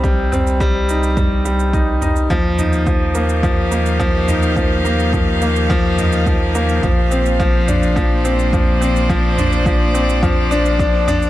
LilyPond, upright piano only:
\new Staff \with { instrumentName = "Upright piano" } { \time 4/4 \key ees \lydian \tempo 4 = 106 g8 c'8 g8 ees'8 g8 g8 ees'8 ees'8 | f8 ees'8 f8 bes8 f8 bes8 f8 ees'8 | f8 bes8 f8 bes8 f8 ees'8 f8 bes8 | f8 c'8 f8 d'8 f8 c'8 f8 c'8 |
f8 d'8 f8 c'8 f8 d'8 d'8 d'8 | }